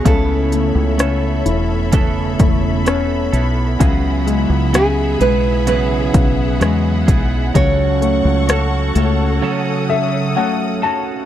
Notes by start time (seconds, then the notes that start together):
Already playing: C#5
0.05 C#2 C#3 A3 B3 E4 A4 E5 B5, kick, closed hi-hat
0.52 A3, closed hi-hat
0.75 C#2
0.98 A3 B3 C#4 E4 A4, cross-stick, closed hi-hat
1.46 E1 E4, closed hi-hat
1.92 C#3 A3 B3 E4 A4, kick, closed hi-hat
2.39 E1 A3, kick, closed hi-hat
2.85 A3 B3 C#4 E4 A4, cross-stick, closed hi-hat
3.32 B1 B3 E4 A4, closed hi-hat
3.79 C#2 C#3 F#3 B3 E4 G#4 E5 F#5, kick, closed hi-hat
4.27 G#3, closed hi-hat
4.50 C#2
4.73 C#3 F#3 B3 E4 G#4, cross-stick, closed hi-hat
5.20 B1 G#3 B3 E4 G#4 B4, closed hi-hat
5.67 C#3 F#3 B3 E4 G#4 B4, closed hi-hat
6.14 B1 C#3, kick, closed hi-hat
6.60 E2 F#3 G#3 B3 E4 G#4, cross-stick, closed hi-hat
7.07 B1 B3 E4 G#4, kick, closed hi-hat
7.54 C#2 C#3 F#3 C#4 F#4 A4 C#5 C#6, kick, closed hi-hat
8.02 A3, closed hi-hat
8.25 C#2
8.48 F#3 C#4 F#4 A4, cross-stick, closed hi-hat
8.95 C#2 A3 C#4 F#4 A4, closed hi-hat
9.42 C#3 F#3 C#4 F#4 A4 D#6
9.89 A4 E5
10.35 F#3 A3 C#4 F#4 A4 F#5
10.82 C#4 F#4 A4 A5